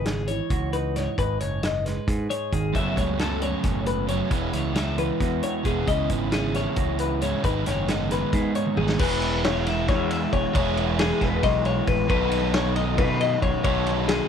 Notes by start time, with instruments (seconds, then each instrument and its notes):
Already playing: picked electric bass G#1, clean electric guitar C#3 E3 G#3 D#4
0.05 clean electric guitar G#4, snare, closed hi-hat
0.27 clean electric guitar E3 C#5, closed hi-hat
0.50 picked electric bass C#2, clean electric guitar F#4, kick, closed hi-hat
0.73 clean electric guitar D#4 B4, closed hi-hat
0.96 clean electric guitar G#2 C#5, snare, closed hi-hat
1.18 picked electric bass G#1, clean electric guitar G#2 D#4 B4, kick, closed hi-hat
1.40 picked electric bass F#1, clean electric guitar C#5, closed hi-hat
1.63 clean electric guitar D#5, snare, closed hi-hat
1.85 clean electric guitar G#3 B4, snare, closed hi-hat
2.08 picked electric bass G#2, clean electric guitar G#4, kick, closed hi-hat
2.30 clean electric guitar D#4 C#5, closed hi-hat
2.52 picked electric bass G#1, clean electric guitar D#3 G#4, kick, closed hi-hat
2.73 picked electric bass F#1, overdriven electric guitar F#2 C#3 F#3 A3 C#4, clean electric guitar F#2 B3 E5, kick, closed hi-hat
2.96 picked electric bass C#2, overdriven electric guitar F#3 A3 C#4, clean electric guitar C#5, kick, closed hi-hat
3.18 overdriven electric guitar F#2 C#3 F#3 A3 C#4, clean electric guitar A4, snare, closed hi-hat
3.40 clean electric guitar F#3 C#5, overdriven electric guitar F#3 A3 C#4, closed hi-hat
3.63 picked electric bass F#1, clean electric guitar A2, kick, snare, closed hi-hat
3.86 clean electric guitar G#2 B4, closed hi-hat
4.08 clean electric guitar F#2 C#5, overdriven electric guitar C#3 F#3 A3 C#4, closed hi-hat
4.30 picked electric bass E1, clean electric guitar E2 C#4 B4, overdriven electric guitar E3 G#3 B3 E4, kick, closed hi-hat
4.52 picked electric bass C#2, overdriven electric guitar G#3 B3 E4, clean electric guitar C#5, closed hi-hat
4.74 overdriven electric guitar E3 G#3 B3 E4, clean electric guitar E5, snare, closed hi-hat
4.97 clean electric guitar E3 B4, overdriven electric guitar G#3 B3 E4, closed hi-hat
5.20 picked electric bass E2, clean electric guitar F#4, kick, snare, closed hi-hat
5.43 clean electric guitar C#4 C#5, closed hi-hat
5.64 picked electric bass E1, clean electric guitar B2 G#4, overdriven electric guitar E3 G#3 B3 E4, kick, closed hi-hat
5.87 picked electric bass C#2, overdriven electric guitar C#3 G#3 C#4 E4, clean electric guitar C#3 E3 B3 E4 D#5, kick, closed hi-hat
6.09 picked electric bass G#1, overdriven electric guitar G#3 C#4 E4, clean electric guitar B4, kick, closed hi-hat
6.31 overdriven electric guitar C#3 G#3 C#4 E4, clean electric guitar G#4, snare, closed hi-hat
6.54 clean electric guitar E3 C#5, overdriven electric guitar G#3 C#4 E4, snare, closed hi-hat
6.76 picked electric bass C#2, clean electric guitar F#4, kick, closed hi-hat
6.99 clean electric guitar B4, closed hi-hat
7.21 clean electric guitar G#2 C#5, overdriven electric guitar C#3 G#3 C#4 E4, closed hi-hat
7.43 picked electric bass G#1, clean electric guitar G#2 D#4 B4, overdriven electric guitar G#2 D#3 G#3 B3 D#4, kick, closed hi-hat
7.66 picked electric bass F#1, overdriven electric guitar G#3 B3 D#4, clean electric guitar C#5, snare, closed hi-hat
7.87 overdriven electric guitar G#2 D#3 G#3 B3 D#4, clean electric guitar D#5, snare, closed hi-hat
8.09 clean electric guitar G#3 B4, overdriven electric guitar B3 D#4, snare, closed hi-hat
8.13 overdriven electric guitar G#3
8.33 picked electric bass G#2, clean electric guitar G#4, kick, snare, closed hi-hat
8.54 clean electric guitar D#4 C#5, closed hi-hat
8.66 high tom
8.76 picked electric bass G#1, clean electric guitar D#3 G#4, overdriven electric guitar D#3 G#3 B3 D#4, mid tom
8.89 snare
8.99 picked electric bass E1, overdriven electric guitar E3 G#3 B3 E4 G#4, clean electric guitar B4, kick, crash
9.22 ride
9.44 clean electric guitar C#5, snare, ride
9.66 clean electric guitar E5, snare, ride
9.89 picked electric bass E2, clean electric guitar C#5, kick, snare, ride
10.11 clean electric guitar E5, ride
10.33 picked electric bass E1, clean electric guitar C#5, kick, ride
10.53 picked electric bass E1, overdriven electric guitar E3 G#3 B3 E4 G#4, clean electric guitar C#5, kick, ride
10.77 ride
10.99 clean electric guitar G#4, snare, ride
11.21 picked electric bass E1, clean electric guitar B4, kick, snare, ride
11.43 picked electric bass B1, clean electric guitar D#5, kick, snare, ride
11.65 clean electric guitar C#5, ride
11.87 picked electric bass A1, clean electric guitar B4, kick, ride
12.08 picked electric bass B1, overdriven electric guitar B2 D#3 F#3 B3 D#4 A4, clean electric guitar B4, kick, ride
12.31 ride
12.54 clean electric guitar C#5, snare, ride
12.76 clean electric guitar D#5, ride
12.98 picked electric bass B2, clean electric guitar B4, kick, ride
13.21 clean electric guitar D#5, ride
13.42 picked electric bass B1, clean electric guitar C#5, kick, ride
13.63 picked electric bass B1, overdriven electric guitar B2 D#3 F#3 B3 D#4 A4, clean electric guitar C#5, kick, ride
13.86 ride
14.08 clean electric guitar G#4, snare, ride